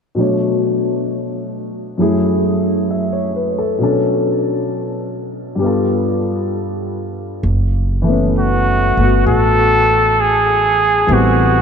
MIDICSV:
0, 0, Header, 1, 4, 480
1, 0, Start_track
1, 0, Key_signature, 3, "minor"
1, 0, Tempo, 910470
1, 81, Time_signature, 4, 2, 24, 8
1, 6124, End_track
2, 0, Start_track
2, 0, Title_t, "Trumpet"
2, 0, Program_c, 0, 56
2, 4422, Note_on_c, 0, 66, 78
2, 4873, Note_off_c, 0, 66, 0
2, 4886, Note_on_c, 0, 69, 93
2, 5381, Note_on_c, 0, 68, 84
2, 5389, Note_off_c, 0, 69, 0
2, 5872, Note_on_c, 0, 66, 79
2, 5879, Note_off_c, 0, 68, 0
2, 6124, Note_off_c, 0, 66, 0
2, 6124, End_track
3, 0, Start_track
3, 0, Title_t, "Grand piano"
3, 0, Program_c, 1, 0
3, 79, Note_on_c, 1, 47, 41
3, 86, Note_on_c, 1, 54, 38
3, 95, Note_on_c, 1, 57, 35
3, 99, Note_on_c, 1, 62, 34
3, 107, Note_on_c, 1, 73, 45
3, 176, Control_c, 1, 64, 127
3, 1040, Note_off_c, 1, 54, 0
3, 1040, Note_on_c, 1, 42, 46
3, 1043, Note_off_c, 1, 47, 0
3, 1046, Note_off_c, 1, 57, 0
3, 1048, Note_on_c, 1, 54, 44
3, 1051, Control_c, 1, 64, 0
3, 1053, Note_off_c, 1, 62, 0
3, 1054, Note_on_c, 1, 57, 44
3, 1057, Note_off_c, 1, 73, 0
3, 1058, Note_on_c, 1, 64, 42
3, 1063, Note_on_c, 1, 68, 52
3, 1129, Control_c, 1, 64, 127
3, 1532, Note_on_c, 1, 76, 37
3, 1648, Note_on_c, 1, 73, 42
3, 1756, Note_off_c, 1, 76, 0
3, 1771, Note_on_c, 1, 71, 38
3, 1854, Note_off_c, 1, 73, 0
3, 1890, Note_on_c, 1, 69, 41
3, 1914, Note_off_c, 1, 71, 0
3, 1994, Note_off_c, 1, 54, 0
3, 1995, Note_on_c, 1, 47, 39
3, 2000, Note_off_c, 1, 42, 0
3, 2002, Note_on_c, 1, 54, 36
3, 2007, Note_off_c, 1, 57, 0
3, 2008, Control_c, 1, 64, 0
3, 2009, Note_off_c, 1, 64, 0
3, 2011, Note_off_c, 1, 68, 0
3, 2012, Note_on_c, 1, 61, 40
3, 2014, Note_off_c, 1, 69, 0
3, 2020, Note_on_c, 1, 62, 38
3, 2022, Note_on_c, 1, 69, 48
3, 2089, Control_c, 1, 64, 127
3, 2928, Note_on_c, 1, 43, 45
3, 2947, Note_on_c, 1, 55, 42
3, 2956, Note_off_c, 1, 47, 0
3, 2959, Note_off_c, 1, 54, 0
3, 2961, Note_on_c, 1, 59, 43
3, 2964, Note_off_c, 1, 61, 0
3, 2965, Control_c, 1, 64, 0
3, 2968, Note_off_c, 1, 62, 0
3, 2969, Note_off_c, 1, 69, 0
3, 2976, Note_on_c, 1, 65, 41
3, 2985, Note_on_c, 1, 69, 50
3, 3063, Control_c, 1, 64, 127
3, 3906, Note_off_c, 1, 43, 0
3, 3915, Note_off_c, 1, 55, 0
3, 3922, Note_off_c, 1, 59, 0
3, 3927, Control_c, 1, 64, 0
3, 3929, Note_off_c, 1, 65, 0
3, 3934, Note_off_c, 1, 69, 0
3, 4029, Control_c, 1, 64, 127
3, 4227, Note_on_c, 1, 52, 45
3, 4239, Note_on_c, 1, 57, 39
3, 4257, Note_on_c, 1, 59, 37
3, 4268, Note_on_c, 1, 61, 39
3, 4283, Note_on_c, 1, 71, 43
3, 4729, Note_off_c, 1, 57, 0
3, 4737, Note_on_c, 1, 57, 35
3, 4739, Note_off_c, 1, 59, 0
3, 4747, Note_on_c, 1, 59, 33
3, 4756, Note_on_c, 1, 66, 43
3, 5827, Note_off_c, 1, 52, 0
3, 5830, Note_off_c, 1, 57, 0
3, 5835, Note_on_c, 1, 52, 49
3, 5838, Note_on_c, 1, 57, 43
3, 5842, Note_off_c, 1, 59, 0
3, 5850, Note_on_c, 1, 59, 42
3, 5852, Control_c, 1, 64, 0
3, 5854, Note_off_c, 1, 61, 0
3, 5856, Note_on_c, 1, 60, 41
3, 5857, Note_off_c, 1, 66, 0
3, 5857, Note_on_c, 1, 55, 55
3, 5861, Note_off_c, 1, 71, 0
3, 5930, Control_c, 1, 64, 127
3, 6124, Note_off_c, 1, 52, 0
3, 6124, Note_off_c, 1, 55, 0
3, 6124, Note_off_c, 1, 57, 0
3, 6124, Note_off_c, 1, 59, 0
3, 6124, Note_off_c, 1, 60, 0
3, 6124, End_track
4, 0, Start_track
4, 0, Title_t, "Upright bass"
4, 0, Program_c, 2, 32
4, 3918, Note_on_c, 2, 30, 67
4, 4709, Note_off_c, 2, 30, 0
4, 4730, Note_on_c, 2, 31, 56
4, 4872, Note_off_c, 2, 31, 0
4, 4885, Note_on_c, 2, 33, 64
4, 5824, Note_off_c, 2, 33, 0
4, 5844, Note_on_c, 2, 33, 70
4, 6124, Note_off_c, 2, 33, 0
4, 6124, End_track
0, 0, End_of_file